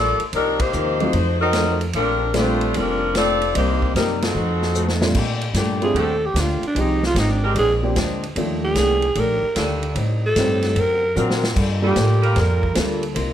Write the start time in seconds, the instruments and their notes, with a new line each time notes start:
Already playing: upright bass A#1, steel-string acoustic guitar G3 A#3 F4 A4, saxophone section A#3 F4 A4 D5
0.19 muted upright bass stroke, ride
0.33 upright bass C2, steel-string acoustic guitar C3 F3 A#3 D#4, saxophone section G3 D4 D#4 A#4, ride
0.59 saxophone section A#3 D#4 G4 C5, kick, ride
0.72 upright bass D#2, steel-string acoustic guitar C3 F3 A#3 D#4, hi-hat pedal
1.00 grand piano F#3 A3 C4 D#4 F4, ride
1.13 upright bass F2, steel-string acoustic guitar F3 A3 D#4 F#4, ride
1.40 saxophone section F#3 C4 D#4 A#4
1.53 steel-string acoustic guitar F3 A3 D#4 F#4, snare, hi-hat pedal, ride
1.81 ride
1.93 upright bass A#1, steel-string acoustic guitar A#2 A3 D4 G4, saxophone section F3 C4 D4 A#4, ride
2.34 steel-string acoustic guitar A#2 A3 D4 G4, grand piano G3 A3 C4 D4 F4, saxophone section D4 F4 C5, snare, hi-hat pedal, ride
2.38 saxophone section A3
2.61 ride
2.74 upright bass F1, steel-string acoustic guitar A#2 A3 D4, saxophone section F3 C4 D4 A#4, ride
2.79 steel-string acoustic guitar G4
3.15 steel-string acoustic guitar A#2 A3 D4 G4, saxophone section C4 F4 A4 D5, snare, hi-hat pedal, ride
3.41 ride
3.54 upright bass C2, steel-string acoustic guitar C3 G3, grand piano G3 A#3 C4 D#4 D5, saxophone section A#3 D#4 G4 C5, ride
3.59 steel-string acoustic guitar A#3 D#4
3.82 kick
3.94 upright bass F#2, steel-string acoustic guitar C3 G3, saxophone section G3 C4 D#4 A#4, snare, hi-hat pedal, ride
3.98 steel-string acoustic guitar A#3 D#4
4.22 saxophone section C4 D#4 F#4 A4, snare, ride
4.35 upright bass F2, steel-string acoustic guitar F3 A3 D#4 F#4
4.62 snare
4.75 steel-string acoustic guitar F3 A3 D#4 F#4, hi-hat pedal
4.88 snare
5.01 grand piano A#2 G3 A3 C4 D4 F4, snare
5.15 upright bass A#2, steel-string acoustic guitar A#2 A3 D4 G4, kick, crash
5.41 ride
5.54 upright bass G2, steel-string acoustic guitar A#2 A3 D4 G4, snare, hi-hat pedal, ride
5.82 grand piano G3 A3 C4 D4 F4, alto saxophone G#4, ride
5.94 upright bass D#2, steel-string acoustic guitar A#2 A3 D4 G4, saxophone section D3 A3 C4 G4, ride
6.00 alto saxophone A4
6.26 alto saxophone G4
6.34 upright bass D2, steel-string acoustic guitar A#2 A3 D4 G4, snare, hi-hat pedal, ride
6.40 alto saxophone F4
6.62 muted upright bass stroke, ride
6.67 alto saxophone D4
6.75 upright bass C2, steel-string acoustic guitar F3 G#3 D#4 G4, grand piano F3 G#3 C4 D#4 G4, ride
6.81 alto saxophone D#4
7.03 alto saxophone F4, snare
7.15 upright bass G#1, steel-string acoustic guitar F3 G#3 D#4 G4, snare, hi-hat pedal, ride
7.19 alto saxophone D#4
7.31 alto saxophone D4
7.42 saxophone section G#3 C4 D4 A#4, alto saxophone G4
7.54 upright bass A#1, steel-string acoustic guitar A#2 G#3 C4 D4, ride
7.59 alto saxophone G#4
7.83 grand piano F3 A#3 C4 D4 G4
7.96 upright bass D2, steel-string acoustic guitar A#2 G#3 C4 D4, snare, hi-hat pedal, ride
8.23 ride
8.36 upright bass D#2, steel-string acoustic guitar D#3 A3 D4 G4, grand piano F3 A3 A#3 D4 F4, ride
8.64 alto saxophone G#4
8.75 upright bass C2, steel-string acoustic guitar D#3 A3 D4 G4, snare, hi-hat pedal, ride
9.02 ride
9.15 upright bass A#1, steel-string acoustic guitar D#3 A3 D4 G4, ride
9.20 alto saxophone A#4
9.43 muted upright bass stroke
9.55 upright bass D2, steel-string acoustic guitar D#3 A3 D4 G4, saxophone section G3 D4 F4 A4, snare, hi-hat pedal, ride
9.83 ride
9.94 steel-string acoustic guitar A2 G3 C4 D#4, upright bass A2, ride
10.26 alto saxophone A4
10.36 upright bass G2, steel-string acoustic guitar A2 G3 C4 D#4, grand piano A3 C4 D#4 G4 A4, snare, hi-hat pedal, ride
10.62 snare, ride
10.75 upright bass F#2, steel-string acoustic guitar D3 C4 F#4 A#4, ride
10.81 alto saxophone A#4
11.16 upright bass A#2, steel-string acoustic guitar D3 C4 F#4 A#4, grand piano F#3 C4 D4 F4 A#4, saxophone section F#3 C4 D4 A#4, hi-hat pedal
11.30 snare
11.44 snare
11.55 upright bass G2, steel-string acoustic guitar G3 A#3 F4 A4, kick, crash
11.82 grand piano G3 A#3 D4 F4 A4, saxophone section G3 A#3 F4 A4
11.88 alto saxophone G4
11.96 upright bass A2, steel-string acoustic guitar G3 A#3 F4 A4, snare, hi-hat pedal, ride
12.22 saxophone section G3 A#3 F4 A#4, ride
12.36 upright bass F2, steel-string acoustic guitar G3 A#3 F4 A4, snare, ride
12.40 alto saxophone A#4
12.63 kick
12.75 upright bass D2, steel-string acoustic guitar G3 A#3 F4 A4, grand piano G3 A#3 D4 F4 A4, snare, hi-hat pedal, ride
13.03 ride
13.14 upright bass C2, steel-string acoustic guitar C3 A#3 D#4 F4, ride